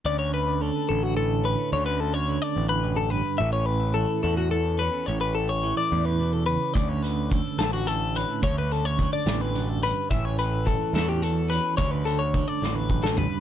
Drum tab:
HH |------------|------------|------------|------------|
SD |------------|------------|------------|------------|
FT |------------|------------|------------|------------|
BD |------------|------------|------------|------------|

HH |x-x-x-x-x-x-|x-x-x-x-x-x-|x-x-x-x-x-x-|x-x-x-------|
SD |------o-----|------o-----|------o-----|------o--o--|
FT |------------|------------|------------|----------o-|
BD |o---o-------|o---o-------|o---o-------|o---o---o---|